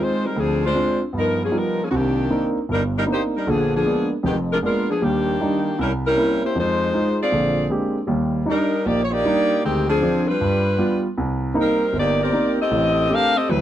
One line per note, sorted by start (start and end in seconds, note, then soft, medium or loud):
0.00 0.25 G#3 soft
0.00 0.26 G#3 medium
0.00 0.25 C4 soft
0.00 0.24 D#4 medium
0.00 0.25 F4 medium
0.00 0.26 F4 medium
0.00 0.26 C5 medium
0.25 0.38 G3 medium
0.25 0.38 C4 medium
0.25 0.38 D#4 medium
0.25 0.38 A#4 medium
0.36 0.70 D2 medium
0.36 0.63 F3 medium
0.36 0.63 C4 medium
0.36 0.63 D4 medium
0.36 0.63 G#4 medium
0.66 1.00 G#3 medium
0.66 1.00 D4 medium
0.66 1.00 F4 medium
0.66 1.00 C5 medium
0.75 1.01 C4 soft
0.75 1.02 D4 soft
0.75 1.02 F4 soft
1.13 1.47 G2 medium
1.13 1.47 B3 medium
1.18 1.40 F3 medium
1.18 1.40 B3 medium
1.18 1.40 D#4 medium
1.18 1.40 A#4 medium
1.44 1.55 F3 medium
1.44 1.55 A#3 medium
1.44 1.55 C#4 medium
1.44 1.55 G#4 medium
1.51 1.79 G3 soft
1.51 1.78 B3 soft
1.51 1.79 D#4 soft
1.51 1.79 F4 soft
1.58 1.80 F3 medium
1.58 1.80 B3 medium
1.58 1.80 D#4 medium
1.58 1.80 A#4 medium
1.83 1.89 F3 medium
1.83 1.89 A#3 medium
1.83 1.89 C#4 medium
1.83 1.89 G#4 medium
1.91 2.25 C2 medium
1.91 2.25 C3 medium
1.91 1.93 F#4 medium
1.96 2.48 D#3 medium
1.96 2.48 A#3 medium
1.96 2.48 D4 medium
1.96 2.47 G4 medium
2.30 2.57 A#3 medium
2.30 2.57 C4 soft
2.30 2.57 D4 soft
2.30 2.57 D#4 medium
2.69 3.02 G1 medium
2.69 3.02 G2 medium
2.69 2.83 G3 medium
2.69 2.83 D4 medium
2.69 2.83 D#4 medium
2.69 2.82 A#4 medium
2.98 3.03 G3 medium
2.98 3.03 D4 medium
2.98 3.03 D#4 medium
2.98 3.03 A#4 medium
3.06 3.33 A#3 medium
3.06 3.33 C4 soft
3.06 3.34 D4 soft
3.06 3.34 D#4 medium
3.12 3.22 A#3 medium
3.12 3.22 D#4 medium
3.12 3.22 G4 medium
3.12 3.22 C5 medium
3.36 3.47 G3 medium
3.36 3.47 D4 medium
3.36 3.47 D#4 medium
3.36 3.47 A#4 medium
3.47 3.80 A#1 medium
3.47 3.80 D3 medium
3.47 3.73 F3 medium
3.47 3.73 B3 medium
3.47 3.73 D4 medium
3.47 3.73 G#4 medium
3.75 4.09 F3 medium
3.75 4.09 B3 medium
3.75 4.09 D4 medium
3.75 4.09 G#4 medium
3.85 4.11 G#3 soft
3.85 4.11 A#3 soft
3.85 4.12 B3 soft
3.85 4.12 D4 medium
4.23 4.57 F1 medium
4.23 4.56 F2 medium
4.23 4.37 D#3 medium
4.23 4.36 G#3 medium
4.23 4.36 B3 medium
4.23 4.36 G4 medium
4.52 4.58 G#3 medium
4.52 4.58 D4 medium
4.52 4.57 F4 medium
4.52 4.57 A#4 medium
4.62 4.88 G#3 medium
4.62 4.87 G#3 medium
4.62 4.89 A#3 soft
4.62 4.89 B3 soft
4.62 4.89 D4 medium
4.62 4.87 D4 medium
4.62 4.87 F4 medium
4.62 4.87 A#4 medium
4.90 5.01 F3 medium
4.90 5.01 B3 medium
4.90 5.01 D4 medium
4.90 5.01 G#4 medium
5.02 5.34 D#2 medium
5.02 5.79 D#3 medium
5.02 5.35 G3 medium
5.02 5.79 A#3 medium
5.02 5.79 D4 medium
5.02 5.79 G4 medium
5.40 5.66 G3 medium
5.40 5.66 D4 soft
5.40 5.67 D#4 medium
5.79 6.12 C2 medium
5.79 5.92 G3 medium
5.79 5.92 C#4 medium
5.79 5.92 E4 medium
5.79 5.91 A#4 medium
6.06 6.41 G3 medium
6.06 6.41 C#4 medium
6.06 6.40 E4 medium
6.06 6.40 A#4 loud
6.17 6.43 A#3 soft
6.17 6.43 C4 soft
6.17 6.43 C#4 soft
6.17 6.44 E4 medium
6.45 6.56 A#3 medium
6.45 6.56 E4 medium
6.45 6.56 G4 medium
6.45 6.56 C5 medium
6.55 6.88 F2 medium
6.55 7.16 G#3 medium
6.55 7.17 C5 loud
6.60 7.17 D#4 medium
6.60 7.17 F4 medium
6.93 7.20 G#3 soft
6.93 7.20 D#4 soft
6.93 7.20 F4 medium
7.22 7.69 C4 medium
7.22 7.69 F4 medium
7.22 7.69 G#4 medium
7.22 7.69 D5 medium
7.32 7.65 A#1 medium
7.32 7.65 D3 medium
7.70 7.97 G#3 medium
7.70 7.97 A#3 soft
7.70 7.97 C4 soft
7.70 7.97 D4 soft
7.70 7.97 G4 medium
8.07 8.42 D#2 medium
8.07 8.41 G3 medium
8.45 8.73 G3 medium
8.45 8.84 G3 medium
8.45 8.74 D4 soft
8.45 8.84 D4 medium
8.45 8.73 D#4 medium
8.50 8.85 D#4 medium
8.50 8.85 A#4 medium
8.86 9.19 A#1 medium
8.86 9.02 A#3 medium
8.86 9.02 D#4 medium
8.86 9.02 G4 medium
8.86 9.03 D5 loud
9.04 9.12 C#5 medium
9.11 9.64 A#3 loud
9.11 9.63 D#4 medium
9.11 9.63 G4 loud
9.11 9.64 D5 loud
9.25 9.51 G3 soft
9.25 9.51 D4 soft
9.25 9.52 D#4 medium
9.64 9.97 D2 medium
9.64 9.87 D#3 medium
9.64 9.87 G#3 medium
9.64 9.87 C4 medium
9.64 9.87 G4 medium
9.88 10.24 F3 medium
9.88 10.25 C4 medium
9.88 10.24 D4 medium
9.88 10.25 G#4 medium
10.01 10.28 F3 medium
10.01 10.28 C4 medium
10.01 10.29 D4 medium
10.27 11.04 G3 medium
10.27 11.04 D4 medium
10.27 11.04 F4 medium
10.27 11.04 B4 medium
10.41 10.74 G2 medium
10.78 11.05 G3 medium
10.78 11.05 B3 soft
10.78 11.06 F4 medium
11.18 11.51 C2 medium
11.54 11.82 A#3 medium
11.54 11.82 C4 soft
11.54 11.82 D#4 medium
11.61 11.94 G3 medium
11.61 11.94 C4 medium
11.61 11.94 D#4 medium
11.61 11.94 A#4 medium
11.93 12.27 G1 medium
11.99 12.20 A#3 medium
11.99 12.20 D#4 medium
11.99 12.20 G4 medium
11.99 12.20 D5 loud
12.23 12.57 C4 medium
12.23 12.57 G4 medium
12.23 12.57 A#4 medium
12.23 12.57 D5 medium
12.32 12.59 A#3 medium
12.32 12.59 C4 soft
12.32 12.59 D#4 medium
12.61 13.11 C4 medium
12.61 13.11 G4 medium
12.61 13.12 A4 medium
12.61 13.12 D#5 loud
12.71 13.04 A1 medium
12.71 13.05 A2 medium
13.10 13.36 A3 medium
13.10 13.36 C4 soft
13.10 13.37 D4 loud
13.10 13.36 G4 medium
13.10 13.37 A#4 medium
13.14 13.35 G4 loud
13.14 13.37 F5 loud
13.36 13.49 C4 medium
13.36 13.49 G4 medium
13.36 13.49 A4 medium
13.36 13.49 D#5 loud
13.49 13.61 D2 medium
13.49 13.61 F#3 medium
13.49 13.61 G3 medium
13.49 13.61 C4 medium
13.49 13.61 E4 medium
13.49 13.61 B4 medium